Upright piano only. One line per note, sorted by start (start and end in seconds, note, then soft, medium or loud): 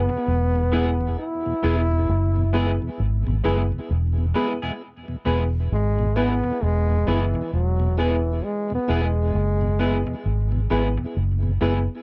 0.72 0.91 B3 medium
0.72 0.91 E4 medium
0.72 0.91 G#4 medium
0.72 0.91 B4 loud
1.62 1.81 B3 medium
1.62 1.82 E4 medium
1.62 1.82 G#4 medium
1.62 1.82 B4 medium
2.53 2.72 B3 loud
2.53 2.72 E4 medium
2.53 2.72 G#4 medium
2.53 2.73 B4 loud
3.44 3.63 B3 loud
3.44 3.63 E4 medium
3.44 3.63 G#4 medium
3.44 3.63 B4 loud
4.35 4.53 B3 medium
4.35 4.54 E4 medium
4.35 4.54 G#4 medium
4.35 4.54 B4 loud
5.25 5.44 B3 medium
5.25 5.44 E4 medium
5.25 5.45 G#4 medium
5.25 5.45 B4 medium
6.16 6.35 B3 medium
6.16 6.35 E4 medium
6.16 6.35 G#4 medium
6.16 6.35 B4 loud
7.07 7.26 B3 loud
7.07 7.26 E4 medium
7.07 7.26 G#4 medium
7.07 7.26 B4 loud
7.98 8.16 B3 medium
7.98 8.17 E4 medium
7.98 8.17 G#4 medium
7.98 8.17 B4 medium
8.89 9.07 B3 medium
8.89 9.07 E4 medium
8.89 9.08 G#4 medium
8.89 9.08 B4 loud
9.79 9.98 B3 medium
9.79 9.98 E4 medium
9.79 9.98 G#4 medium
9.79 9.98 B4 loud
10.07 10.14 G#4 soft
10.07 10.14 B4 soft
10.70 10.89 B3 medium
10.70 10.89 E4 medium
10.70 10.89 G#4 medium
10.70 10.89 B4 loud
11.61 11.79 B3 medium
11.61 11.80 E4 medium
11.61 11.80 G#4 medium
11.61 11.80 B4 medium